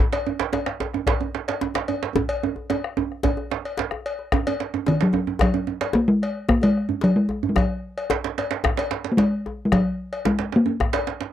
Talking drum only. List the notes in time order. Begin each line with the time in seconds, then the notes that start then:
4.88 D#3
5.02 F#3
5.42 F#3
5.95 A#3
6.08 G#3
6.49 A#3
6.64 G#3
7.04 F#3
7.16 G#3
7.49 G#3
7.57 F#3
9.12 A#3
9.17 G#3
9.65 G#3
9.73 F#3
10.26 G#3
10.56 A#3